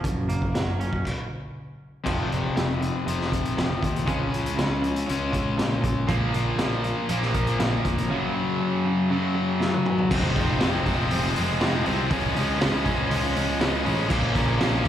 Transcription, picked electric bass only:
0.04 F#1
0.29 F#1
0.55 F#1
0.80 F#1
2.06 F1
2.32 F1
2.56 F1
3.07 F1
3.57 F1
3.83 D#2
4.08 C#2
4.33 C#2
4.60 C#2
5.10 C#2
5.60 A#2
6.09 A#1
6.35 A#1
6.60 A#1
7.09 A#1
7.61 A#1
7.85 F1
10.11 F1
10.36 F1
10.63 F1
10.86 F1
11.13 F1
11.38 F1
11.62 F1
11.87 C2
12.11 C#2
12.37 C#2
12.62 C#2
12.86 C#2
13.11 C#2
13.37 C#2
13.62 C#2
13.87 A1
14.11 A#1
14.35 A#1
14.61 A#1

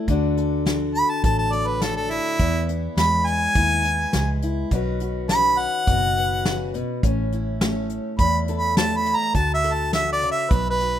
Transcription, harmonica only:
0.95 B5
1.10 A5
1.24 A5
1.39 A5
1.53 D5
1.67 B4
1.82 A4
1.96 A4
2.11 E4
2.98 B5
3.27 G#5
5.30 B5
5.59 F#5
8.19 B5
8.58 B5
8.78 A5
8.96 B5
9.16 A#5
9.35 A5
9.54 E5
9.74 A5
9.94 E5
10.12 D5
10.32 E5
10.52 B4
10.70 B4

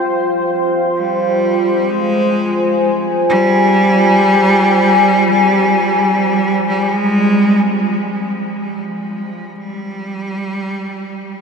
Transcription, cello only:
0.97 G3
1.90 G#3
3.29 G3
6.68 G3
6.92 G#3
7.66 G3
7.88 F3
8.62 G3
8.85 F3
9.55 G3

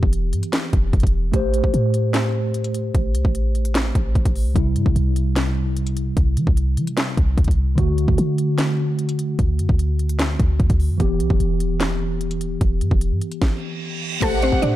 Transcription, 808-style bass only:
0.03 E1
0.33 G2
0.73 E1
0.93 E1
1.03 E1
1.34 A1
1.64 A1
1.74 A2
2.95 A1
3.15 C2
3.25 A1
3.95 A1
4.15 A1
4.25 A1
4.46 C2
4.56 C2
4.76 G2
4.86 C2
4.96 C2
6.17 C2
6.37 E3
6.47 C2
6.77 E3
7.17 C2
7.38 C2
7.48 C2
7.78 D2
8.08 D2
8.18 D3
9.39 D2
9.59 F#2
9.69 D2
10.40 D2
10.60 D2
10.70 D2
10.90 F#2
11.00 E1
11.20 B1
11.30 E1
11.40 E1
12.61 E1
12.81 G2
12.91 E1
13.11 G2
14.22 A1
14.52 A1
14.62 A2

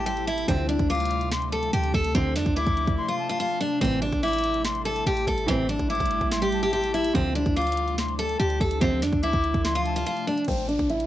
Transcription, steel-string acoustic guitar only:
0.06 G4
0.27 E4
0.48 C4
0.69 D4
0.90 F4
1.52 A4
1.73 G4
1.94 A4
2.15 C4
2.36 D4
2.57 E4
3.09 F4
3.30 F4
3.40 F4
3.61 D4
3.81 C4
4.02 D4
4.23 E4
4.85 A4
5.07 G4
5.27 A4
5.48 C4
5.69 D4
5.90 E4
6.42 G4
6.63 G4
6.73 G4
6.94 E4
7.15 C4
7.35 D4
7.57 F4
8.19 A4
8.40 G4
8.61 A4
8.81 C4
9.02 D4
9.23 E4
9.75 F4
9.96 F4
10.07 F4
10.27 D4
10.48 C4
10.69 D4
10.90 E4

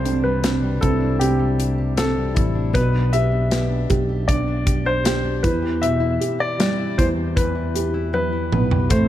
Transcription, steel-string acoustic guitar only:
Already playing: C3 G3
0.05 D4
0.25 G3
0.43 D4
0.63 G3
0.81 E4
1.00 D4
1.20 C3
1.39 G3
1.59 D4
1.78 G3
1.97 D4
2.16 G3
2.35 E4
2.55 D4
2.73 B3
2.93 D4
3.12 G4
3.32 D4
3.51 G4
3.69 D4
4.09 G4
4.48 D4
4.66 G4
4.86 D4
5.04 G4
5.25 D4
5.43 E3
5.62 G4
5.81 E3
6.00 E4
6.20 G4
6.39 E4
6.59 G4
6.78 E4
7.17 G4
7.36 E3
7.55 E4
7.74 G4
7.94 E4
8.13 G4
8.32 E4
8.52 B4
8.70 G4
8.90 A3

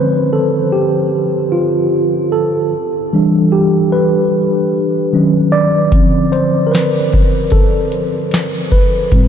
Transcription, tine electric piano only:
Already playing: D3 F3 C4 B4
0.33 A4
0.72 G4
1.52 F4
2.32 A4
3.13 E3 G3 D4
3.52 G4
3.92 B4
5.13 D#3 F#3 C#4
5.52 D5
5.93 D3 F3 C4
6.32 C5
6.67 A#4
6.72 B4
7.52 A4
8.72 B4
9.13 A2 G3 C4

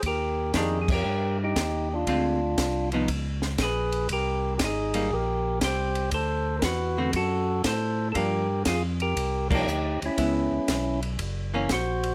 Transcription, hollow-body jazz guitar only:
0.55 D#3 A#3 D4 G4
2.07 D3 G#3 C4 F4
2.93 F3 B3 D#4
4.94 G3 A#3 D#4
6.97 D3 A3 C4 F#4
8.15 F3 A#3 D4
9.50 F3 A#3 D4
10.17 G#3 B3 E4
11.54 E3 A#3 C#4

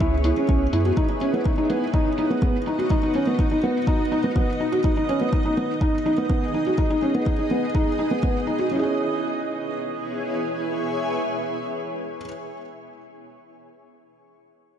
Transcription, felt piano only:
0.01 E4
0.25 E4
0.37 C#4
0.49 C#4
0.73 E4
0.85 F#4
0.97 D#4
1.09 D#4
1.21 C#4
1.34 B3
1.46 D#4
1.58 D#4
1.70 B3
1.94 D#4
2.18 D#4
2.30 B3
2.43 B3
2.67 D#4
2.79 F#4
2.91 D#4
3.03 D#4
3.15 C#4
3.27 B3
3.39 D#4
3.51 D#4
3.64 B3
3.88 D#4
4.12 D#4
4.24 B3
4.36 B3
4.60 D#4
4.72 F#4
4.85 D#4
4.97 D#4
5.09 C#4
5.21 B3
5.33 D#4
5.45 D#4
5.57 B3
5.81 D#4
6.06 D#4
6.18 B3
6.30 B3
6.54 D#4
6.67 F#4
6.78 D#4
6.90 D#4
7.02 C#4
7.15 B3
7.26 D#4
7.39 D#4
7.51 B3
7.75 D#4
7.99 D#4
8.11 B3
8.23 B3
8.47 D#4
8.59 F#4
8.71 C#4 E4
8.79 G#4
8.83 C#5

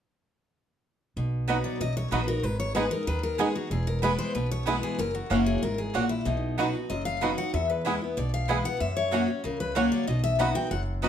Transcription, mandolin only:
1.48 B3 F#4 D#5 B5
2.12 B3 F#4 D#5 B5
2.75 B3 G#4 D#5 G#5
3.38 B3 G#4 D#5 G#5
4.02 B3 E4 B4 G#5
4.66 B3 E4 B4 G#5
5.30 A#3 F#4 C#5 F#5
5.94 A#3 F#4 C#5 F#5
6.58 B3 F#4 D#5 B5
7.21 B3 F#4 D#5 B5
7.85 B3 E4 B4 G#5
8.48 B3 E4 B4 G#5
9.12 A#3 F#4 C#5 F#5
9.75 A#3 F#4 C#5 F#5
10.39 B3 F#4 D#5 B5
11.02 B3 F#4 D#5 B5

